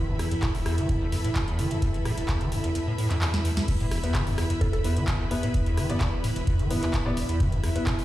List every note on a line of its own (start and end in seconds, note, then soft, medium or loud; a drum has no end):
0.00 3.64 E3 medium
0.00 3.64 E4 medium
0.00 8.05 E4 medium
0.00 3.64 A4 medium
0.00 8.05 B4 medium
0.00 8.05 E5 medium
0.00 3.64 B5 medium
0.00 8.05 B5 medium
0.08 0.17 E2 loud
0.19 0.26 E2 medium
0.19 cross-stick medium
0.19 open hi-hat loud
0.31 0.35 E2 medium
0.31 closed hi-hat medium
0.42 0.49 A2 medium
0.42 kick loud
0.42 cross-stick medium
0.42 clap loud
0.42 closed hi-hat medium
0.55 0.61 E1 loud
0.55 open hi-hat medium
0.66 0.79 E2 medium
0.66 cross-stick medium
0.66 open hi-hat medium
0.78 0.91 E3 medium
0.78 closed hi-hat medium
0.89 0.99 E2 loud
0.89 kick loud
0.89 closed hi-hat medium
1.01 1.07 E2 medium
1.12 1.16 E2 medium
1.12 open hi-hat medium
1.24 1.31 A2 medium
1.24 closed hi-hat medium
1.35 1.42 E1 loud
1.35 kick loud
1.35 clap loud
1.35 closed hi-hat medium
1.48 1.60 E2 medium
1.48 closed hi-hat soft
1.59 1.72 E3 medium
1.59 open hi-hat loud
1.71 1.80 E2 loud
1.71 closed hi-hat medium
1.82 1.89 E2 medium
1.82 kick loud
1.82 closed hi-hat medium
1.94 1.98 E2 medium
1.94 closed hi-hat soft
2.05 2.12 A2 medium
2.05 cross-stick medium
2.05 open hi-hat loud
2.17 2.24 E1 loud
2.17 closed hi-hat medium
2.28 2.42 E2 medium
2.28 kick loud
2.28 cross-stick medium
2.28 clap loud
2.28 closed hi-hat medium
2.41 2.53 E3 medium
2.41 closed hi-hat soft
2.52 2.62 E2 loud
2.52 open hi-hat loud
2.64 2.70 E2 medium
2.64 closed hi-hat medium
2.75 2.79 E2 medium
2.75 closed hi-hat medium
2.87 2.93 A2 medium
2.98 3.08 A2 medium
2.98 open hi-hat loud
3.10 3.17 F2 loud
3.10 clap soft
3.10 closed hi-hat medium
3.21 3.28 E2 medium
3.21 clap loud
3.21 open hi-hat medium
3.34 3.40 E2 medium
3.34 snare medium
3.34 closed hi-hat soft
3.45 3.52 E2 medium
3.45 open hi-hat loud
3.57 3.61 E2 loud
3.57 snare loud
3.57 closed hi-hat medium
3.68 3.72 E2 medium
3.68 8.05 E3 medium
3.68 8.05 E4 medium
3.68 8.05 B4 medium
3.68 8.05 B5 medium
3.68 kick loud
3.68 closed hi-hat medium
3.68 crash loud
3.80 3.86 A2 medium
3.80 closed hi-hat soft
3.91 3.98 E1 loud
3.91 cross-stick medium
3.91 open hi-hat loud
4.03 4.16 E2 medium
4.03 4.13 B3 medium
4.03 4.13 E4 medium
4.03 4.13 B4 medium
4.03 closed hi-hat medium
4.14 4.28 E3 medium
4.14 kick loud
4.14 cross-stick medium
4.14 clap loud
4.14 closed hi-hat medium
4.27 4.36 E2 loud
4.27 open hi-hat medium
4.38 4.45 E2 medium
4.38 cross-stick medium
4.38 open hi-hat loud
4.50 4.54 E2 medium
4.50 closed hi-hat medium
4.61 4.68 A2 medium
4.61 4.69 A4 medium
4.61 kick loud
4.61 closed hi-hat medium
4.73 4.79 E1 loud
4.73 4.80 A4 medium
4.73 closed hi-hat soft
4.84 4.98 E2 medium
4.84 4.94 B3 medium
4.84 4.94 E4 medium
4.84 4.94 B4 medium
4.84 open hi-hat loud
4.97 5.09 E3 medium
4.97 closed hi-hat medium
5.07 5.18 E2 loud
5.07 kick loud
5.07 clap loud
5.07 closed hi-hat medium
5.20 5.26 E2 medium
5.31 5.35 E2 medium
5.31 5.41 B3 medium
5.31 5.41 E4 medium
5.31 5.41 B4 loud
5.31 open hi-hat loud
5.43 5.49 A2 medium
5.43 5.52 B3 medium
5.43 5.52 E4 medium
5.43 5.52 B4 medium
5.43 closed hi-hat medium
5.54 5.61 E1 loud
5.54 kick loud
5.54 closed hi-hat medium
5.66 5.79 E2 medium
5.66 closed hi-hat soft
5.77 5.91 E3 medium
5.77 cross-stick medium
5.77 open hi-hat loud
5.90 5.99 E2 loud
5.90 5.99 B3 loud
5.90 5.99 E4 medium
5.90 5.99 D5 loud
5.90 closed hi-hat medium
6.01 6.07 E2 medium
6.01 kick loud
6.01 cross-stick medium
6.01 clap loud
6.01 closed hi-hat medium
6.13 6.16 E2 medium
6.24 6.31 A2 medium
6.24 open hi-hat loud
6.36 6.42 E1 loud
6.36 closed hi-hat medium
6.47 6.61 E2 medium
6.47 kick loud
6.47 closed hi-hat medium
6.59 6.72 E3 medium
6.59 closed hi-hat soft
6.70 6.80 E2 loud
6.70 6.80 B3 medium
6.70 6.80 E4 medium
6.70 6.80 B4 medium
6.70 open hi-hat loud
6.82 6.89 E2 medium
6.82 6.92 B3 medium
6.82 6.92 E4 medium
6.82 6.92 B4 medium
6.82 clap soft
6.82 closed hi-hat medium
6.94 6.98 E2 medium
6.94 kick loud
6.94 clap loud
6.94 closed hi-hat medium
7.06 7.12 A2 medium
7.06 7.15 B3 loud
7.06 7.15 E4 medium
7.06 7.15 D5 loud
7.17 7.24 E1 loud
7.17 open hi-hat loud
7.29 7.42 E2 medium
7.29 closed hi-hat medium
7.40 7.54 E3 medium
7.40 kick loud
7.40 closed hi-hat medium
7.52 7.61 E2 loud
7.52 closed hi-hat soft
7.63 7.70 E2 medium
7.63 cross-stick medium
7.63 open hi-hat loud
7.75 7.79 E2 medium
7.75 7.85 B3 medium
7.75 7.85 E4 medium
7.75 7.85 B4 medium
7.75 closed hi-hat medium
7.87 7.93 A2 medium
7.87 kick loud
7.87 cross-stick medium
7.87 clap loud
7.87 closed hi-hat medium
7.99 8.05 E1 loud
7.99 open hi-hat medium